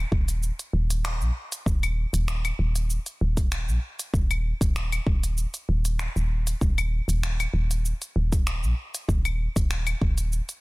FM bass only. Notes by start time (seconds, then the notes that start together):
0.12 D#1
0.73 D#1
1.21 A#1
1.66 D#1
2.13 D#1
2.59 D#1
3.21 D#1
3.68 A#1
4.14 D#1
4.61 D#1
5.07 D#1
5.69 D#1
6.16 D#1
6.61 D#1
7.08 D#1
7.54 D#1
8.16 D#1
8.63 A#1
9.08 D#1
9.56 D#1
10.01 D#1